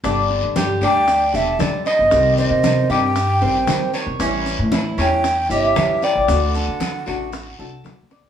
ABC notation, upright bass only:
X:1
M:4/4
L:1/16
Q:1/4=115
K:Ador
V:1 name="Upright bass" clef=bass
G,,,3 G,,3 D,,4 E,,,2 z3 G,,, | C,,3 C,3 G,,4 A,,,2 z3 B,,, | A,,,3 A,,3 E,,4 G,,,2 z3 A,,, | D,,3 D,3 A,,,4 C,,2 z3 D,, |]